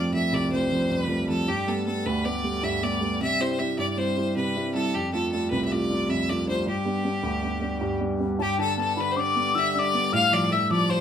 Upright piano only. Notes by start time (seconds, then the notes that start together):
Already playing: F2 F3 A3 C4
0.13 F3 A3 C4
0.32 C2
0.52 F3 A3 C4
0.71 F3 A3 C4
0.90 F2
1.08 F3 A3 C4
1.28 F3 A3 C4
1.48 G2
1.67 G3 A3 B3
1.87 G3 A3 B3
2.06 D2
2.24 G3 A3 B3
2.44 G3 A3 B3
2.63 G2
2.82 G3 A3 B3
3.01 G3 A3 B3
3.21 C3
3.40 G3 C4 E4
3.59 G3 C4 E4
3.78 G2
3.97 G3 C4 E4
4.16 G3 C4 E4
4.36 C3
4.56 G3 C4 E4
4.75 G3 C4 E4
4.95 F2
5.13 A3 D4 F4
5.33 A3 D4 F4
5.52 C2
5.71 A3 D4 F4
5.90 A3 D4 F4
6.09 F2
6.28 A3 D4 F4
6.47 A3 D4 F4
6.66 G2
6.85 G3 B3 D4
7.04 G3 B3 D4
7.23 D2
7.42 G3 B3 D4
7.61 G3 B3 D4
7.81 G2
8.00 G3 B3 D4
8.19 G3 B3 D4
8.39 G2
8.59 D3
8.77 B3
8.97 D3
9.16 D4
9.36 B3
9.55 D3
9.75 D4
9.94 B3
10.13 A2
10.31 F3
10.51 A3
10.70 F3
10.89 F4